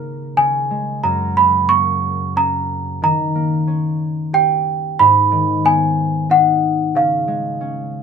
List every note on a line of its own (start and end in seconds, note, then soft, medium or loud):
0.00 0.36 C#3 medium
0.00 1.70 A#3 soft
0.00 1.10 D#4 soft
0.00 1.84 A#4 soft
0.00 0.41 A#5 medium
0.37 1.08 C#3 medium
0.37 1.00 G#5 medium
0.71 1.08 G#3 soft
1.04 3.07 F#2 medium
1.04 1.38 A#5 medium
1.37 3.07 C#3 soft
1.37 1.71 B5 medium
1.69 3.35 A#3 soft
1.69 2.31 C#6 medium
2.36 3.67 C#4 soft
2.36 2.99 A#5 medium
3.02 5.05 D#3 medium
3.02 4.31 A#5 medium
3.35 5.70 A#3 soft
3.67 6.57 C#4 soft
4.33 5.06 G4 medium
4.33 5.02 G5 medium
4.99 7.01 G#2 medium
4.99 5.67 B5 medium
5.31 7.01 D#3 soft
5.64 8.03 B3 soft
5.64 6.27 G#5 medium
6.30 8.03 D#4 medium
6.30 6.98 F#5 medium
6.95 8.03 C#3 medium
6.95 8.03 F5 medium
7.28 8.03 G#3 soft
7.61 8.03 C#4 soft